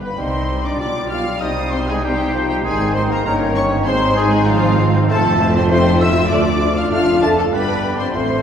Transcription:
0.02 B3 B4 B5
0.17 C2 C3 G3 C4 D#4 C5 D#5 C6
0.64 D4 D5 D6
0.80 B1 B2 G3 D4 F4 D5 D6
1.11 F4 F5 F6
1.40 C2 C3 G3 D#4 C5 D#5 D#6
1.72 C4 C5 C6
1.88 G#3 G#4 G#5
2.03 G3 D#4 G4 C5 G5
2.35 F3
2.47 G3 G4 G5
2.64 G#1 G#2 D#3 G#3 C4 D#4 G#4 C5 G#5
2.93 C4 C5 C6
3.10 A#3 A#4 A#5
3.25 G1 G2 D#3 A#3 C#4 D#4 A#4 C#5 A#5
3.55 C#4 C#5 C#6
3.85 G#1 G#2 G#3 C4 D#4 C5 C6
4.17 G#3 G#4 G#5
4.47 F3 F4 F5
5.09 F1 F2 A3 F4 A4 C5 A5
5.40 A3 F4 C5
5.55 C4 C5 C6
5.70 A3 C4 F4 C5 C6
6.00 A3 E4 F4 C5 E5 E6
6.29 D2 A3 D4 F4 D5 D6
6.34 D4
6.60 A3 F4 D5
6.76 F4 F5 F6
6.91 F1 F2 A3 D4 F4 A4 D5 F5 F6
7.21 A3 D4 D5 A5 A6
7.26 A4
7.38 A3 A4 A5
7.51 G1 G2 G3 B3 D4 G4 B4 D5 B5
7.98 C4 C5 C6
8.12 A1 A2 A3 C4 F4 C5 C6
8.16 C5

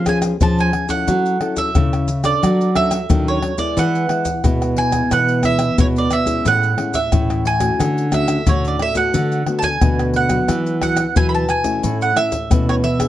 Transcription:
Already playing: F3
0.06 B3 C#4 G#4 G#5, pandeiro, tamborim, maracas, surdo
0.22 pandeiro, tamborim, maracas
0.41 F3 B3 C#4 G#4 A5, pandeiro, maracas, surdo
0.58 G#5, pandeiro, maracas
0.73 pandeiro, tamborim
0.89 C#4 E4 A4 F#5, pandeiro, maracas, surdo
1.08 F#3, pandeiro, maracas, surdo
1.26 pandeiro, maracas
1.41 C#4 E4 A4, pandeiro, tamborim
1.57 E5, pandeiro, maracas, surdo
1.75 C#3 C#4 E4 A4, pandeiro, tamborim, maracas, surdo
1.93 pandeiro, tamborim, maracas
2.08 pandeiro, maracas
2.24 D4 A4 D5, pandeiro, tamborim, maracas, surdo
2.43 F#3, pandeiro, tamborim, maracas, surdo
2.61 pandeiro, maracas
2.75 C#4 D4 A4 E5, pandeiro, tamborim, surdo
2.91 pandeiro, tamborim, maracas
3.09 D#3 F#3 C#4 D4 A4, pandeiro, maracas, surdo
3.28 C#5, pandeiro, maracas
3.42 pandeiro, tamborim
3.58 G#3 B3 E4 D5, pandeiro, maracas, surdo
3.77 E3 F#5, pandeiro, maracas, surdo
3.95 pandeiro, maracas
4.09 G#3 B3 E4, pandeiro, tamborim
4.25 pandeiro, maracas, surdo
4.44 B2 G#3 B3 E4, pandeiro, tamborim, maracas, surdo
4.62 pandeiro, tamborim, maracas
4.76 G#5, pandeiro
4.91 G#3 B3 E4, pandeiro, tamborim, maracas, surdo
5.10 B2 E3 F#5, pandeiro, tamborim, maracas, surdo
5.29 pandeiro, maracas
5.43 G#3 B3 E4 E5, pandeiro, tamborim, maracas, surdo
5.59 pandeiro, tamborim, maracas
5.78 B2 G#3 B3 E4 C#5, pandeiro, maracas, surdo
5.96 D5, pandeiro, maracas
6.11 E5, pandeiro, tamborim, maracas
6.25 G#3 C#4 E4, pandeiro, maracas, surdo
6.45 A2 F#5, pandeiro, maracas, surdo
6.63 pandeiro, maracas
6.77 G#3 C#4 E4, pandeiro, tamborim
6.94 E5, pandeiro, maracas, surdo
7.12 A2 E3 G#3 C#4 E4, pandeiro, tamborim, maracas, surdo
7.30 pandeiro, tamborim, maracas
7.45 G#5, pandeiro
7.60 A3 C#4 F#4, pandeiro, tamborim, maracas, surdo
7.80 D3, pandeiro, tamborim, maracas, surdo
7.98 pandeiro, maracas
8.12 A3 C#4 F#4 E5, pandeiro, tamborim, maracas, surdo
8.28 pandeiro, tamborim, maracas
8.46 A2 D3 A3 C#4 F#4 C#5, pandeiro, maracas, surdo
8.65 D5, pandeiro, maracas
8.79 E5, pandeiro, tamborim
8.95 A3 B3 F#4 F#5, pandeiro, maracas, surdo
9.14 D3, pandeiro, maracas, surdo
9.32 pandeiro, maracas
9.46 A3 B3 F#4, pandeiro, tamborim
9.59 A5, pandeiro, maracas, surdo
9.64 G#5
9.81 B2 D3 A3 B3 F#4, pandeiro, tamborim, maracas, surdo
9.99 pandeiro, tamborim, maracas
10.14 F#5, pandeiro
10.29 F#3 B3 F#4, pandeiro, tamborim, maracas, surdo
10.48 E3, pandeiro, tamborim, maracas, surdo
10.67 pandeiro, maracas
10.82 F#3 B3 F#4 F#5, pandeiro, tamborim, surdo
10.97 pandeiro, tamborim, maracas
11.16 B2 E3 F#3 B3 F#4 G#5, pandeiro, maracas, surdo
11.29 B5
11.34 A5, pandeiro, maracas
11.49 G#5, pandeiro, tamborim, maracas
11.64 A3 C#4 E4, pandeiro, maracas, surdo
11.84 A2, pandeiro, maracas, surdo
12.01 F#5, pandeiro, maracas
12.15 A3 C#4 E4 E5, pandeiro, tamborim, maracas
12.32 pandeiro, maracas, surdo
12.50 B2 E3 A3 C#4 E4, pandeiro, tamborim, maracas, surdo
12.69 C#5, pandeiro, tamborim, maracas
12.84 E5, pandeiro
12.99 B3 D4 G#4, pandeiro, tamborim, maracas, surdo

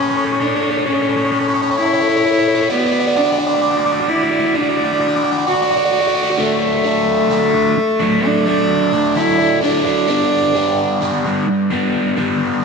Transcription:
Already playing: C#4
0.02 A4 C#5
0.09 A4 C#5
0.16 A4 C#5
0.24 A4 C#5
0.32 A4 C#5
0.40 D4 A4 C#5
0.47 A4 C#5
0.55 A4 C#5
0.61 A4 C#5
0.71 A4 C#5
0.77 A4 C#5
0.86 C#4 A4 C#5
0.92 A4 C#5
1.00 A4 C#5
1.09 A4 C#5
1.16 A4 C#5
1.24 A4 C#5
1.32 A4 C#5
1.39 A4 C#5
1.47 A4 C#5
1.54 A4 C#5
1.62 A4 C#5
1.69 A4 C#5
1.77 E4 A4 C#5
1.84 A4 C#5
1.92 A4 C#5
2.00 A4 C#5
2.08 A4 C#5
2.16 A4 C#5
2.23 A4 C#5
2.31 A4 C#5
2.38 A4 C#5
2.48 A4 C#5
2.54 A4 C#5
2.61 A4 C#5
2.70 B3 F#4 D5
2.77 F#4 D5
2.85 F#4 D5
2.92 F#4 D5
3.00 F#4 D5
3.07 F#4 D5
3.15 D4 F#4 D5
3.23 F#4 D5
3.31 F#4 D5
3.38 F#4 D5
3.46 F#4 D5
3.54 F#4 D5
3.61 F#4 D5
3.70 F#4 D5
3.76 F#4 D5
3.85 F#4 D5
3.92 F#4 D5
4.00 F#4 D5
4.07 E4 F#4 D5
4.16 F#4 D5
4.23 F#4 D5
4.30 F#4 D5
4.39 F#4 D5
4.46 F#4 D5
4.54 D4 F#4 D5
4.61 F#4 D5
4.69 F#4 D5
4.76 F#4 D5
4.84 F#4 D5
4.93 F#4 D5
5.00 F#4 D5
5.08 F#4 D5
5.15 F#4 D5
5.23 F#4 D5
5.31 F#4 D5
5.38 F#4 D5
5.47 F#4 D5
5.53 F#4 D5
5.62 F#4 D5
5.70 F#4 D5
5.76 F#4 D5
5.84 F#4 D5
5.92 F#4 D5
5.99 F#4 D5
6.07 F#4 D5
6.14 F#4 D5
6.23 F#4 D5
6.30 F#4 D5
6.38 D3 F#3 A3 D4
6.84 D3 F#3 A3 D4
7.30 D3 F#3 A3 D4
7.53 F#3 A3 D4
7.77 muted overdriven electric guitar stroke
8.00 F#3 A3 D4
8.25 D4
8.46 F#3 A3 D4
8.93 F#3 A3 D4
9.15 D3 F#3 A3 D4 E4
9.38 F#3 A3 D4
9.61 D3 F#3 A3 D4
9.85 F#3 A3 D4
10.07 G2 D3 G3 B3 D4
10.54 D3 G3 B3 D4
11.01 G2 D3 G3 B3 D4
11.24 G3 B3 D4
11.47 muted overdriven electric guitar stroke
11.70 G3 B3 D4
12.16 G3 B3 D4

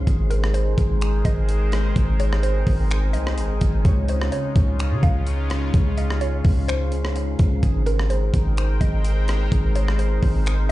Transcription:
Already playing: C#3 C#4 C5
0.07 G#1 G#3 C4 D#4 G#4 A#4 C5 G5, kick, closed hi-hat
0.30 C4 A#4, closed hi-hat
0.44 cross-stick
0.54 G#3 C5, closed hi-hat
0.78 G#1 G#4, kick, closed hi-hat
1.01 finger snap, closed hi-hat
1.25 G#1 G#3 D#5, kick, closed hi-hat
1.49 G#4, closed hi-hat
1.72 C4, cross-stick, closed hi-hat
1.96 G#1 G#3 G#5, kick, closed hi-hat
2.19 G#4 C#5, closed hi-hat
2.33 cross-stick
2.43 C4 C5, closed hi-hat
2.66 G#1 G#3, kick, open hi-hat
2.91 G#4, finger snap, closed hi-hat
3.13 C2 D#5, closed hi-hat
3.27 cross-stick
3.38 G#1 G#3, closed hi-hat
3.61 G#1, kick, closed hi-hat
3.85 C#2 C#3 G#3 C#4 F4 C#5 F5 C6, kick, closed hi-hat
4.08 C#4 C5, closed hi-hat
4.22 cross-stick
4.32 C#3 C#5, closed hi-hat
4.56 C#2 C#5, kick, closed hi-hat
4.79 finger snap, closed hi-hat
4.91 C#3
5.03 C#2 C#3 F5, kick, closed hi-hat
5.27 C#5, closed hi-hat
5.50 C#4, cross-stick, closed hi-hat
5.74 C#2 C#3 A#4, kick, closed hi-hat
5.97 D#5 F5, closed hi-hat
6.10 cross-stick
6.21 C#4 C#5, closed hi-hat
6.45 C#2 C#3, kick, open hi-hat
6.68 C5, finger snap, closed hi-hat
6.92 closed hi-hat
7.05 cross-stick
7.16 C#3, closed hi-hat
7.39 C#2, kick, closed hi-hat
7.63 G#1 G#3 C4 D#4 G#4 A#4 C5 G5, kick, closed hi-hat
7.86 C4 A#4, closed hi-hat
7.99 cross-stick
8.10 G#3 C5, closed hi-hat
8.34 G#1 G#4, kick, closed hi-hat
8.57 finger snap, closed hi-hat
8.81 G#1 G#3 D#5, kick, closed hi-hat
9.04 G#4, closed hi-hat
9.28 C4, cross-stick, closed hi-hat
9.52 G#1 G#3 F5, kick, closed hi-hat
9.75 G#4 C#5, closed hi-hat
9.88 cross-stick
9.99 C4 C5, closed hi-hat
10.22 G#1 G#3, kick, open hi-hat
10.46 G#4, finger snap, closed hi-hat

